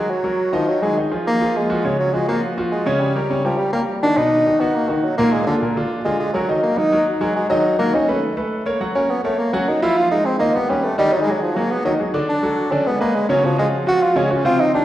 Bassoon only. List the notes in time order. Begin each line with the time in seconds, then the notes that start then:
Already playing: G#3
0.10 F#3
0.53 F3
0.68 F#3
0.82 G#3
1.27 A#3
1.57 G#3
1.99 F#3
2.14 G#3
2.28 A#3
2.72 G#3
3.01 G3
3.45 F3
3.58 G3
3.73 A#3
4.03 D4
4.17 D#4
4.60 B3
4.75 A#3
4.89 D#3
5.03 F#3
5.17 A#3
5.32 G#3
5.47 D3
6.05 G#3
6.19 G#3
6.33 F#3
6.63 A#3
6.77 D#4
7.20 G#3
7.36 G#3
7.49 F#3
7.79 A#3
7.94 C#4
8.95 C#4
9.10 B3
9.24 A3
9.39 A#3
9.53 C#4
9.68 D#4
9.82 E4
9.97 F4
10.11 D#4
10.25 C4
10.39 A#3
10.55 B3
10.69 C#4
10.84 A3
10.99 G3
11.12 F#3
11.22 G#3
11.32 F#3
11.42 F3
11.56 A#3
11.71 B3
11.85 F#3
12.29 D4
12.72 C#4
12.87 B3
13.01 A#3
13.15 G#3
13.30 F#3
13.45 F3
13.59 G#3
13.88 F#4
14.02 F4
14.17 G#3
14.31 C#4
14.45 F4
14.60 D#4
14.75 D4